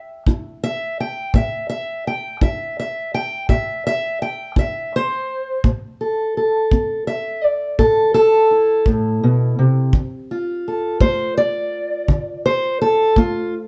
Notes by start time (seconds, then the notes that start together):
0.26 E4, kick
0.64 E5
1.00 G5
1.34 A2 E5, kick
1.70 E5
2.07 G5
2.42 E4 E5, kick
2.80 E5
3.14 G5
3.49 A2 E5, kick
3.87 E5
4.22 G5
4.56 E4 E5, kick
4.96 C5
5.64 A2, kick
6.01 A4
6.37 A4
6.71 C4, kick
7.07 E5
7.44 D5
7.79 A2 A4, kick
8.14 A4
8.51 E4
8.86 A2, kick
9.23 B2
9.59 C3
9.93 D3, kick
10.31 F4
10.68 A4
11.01 A3 C5, kick
11.37 D5
12.08 D3, kick
12.46 C5
12.82 A4
13.16 A3 F4, kick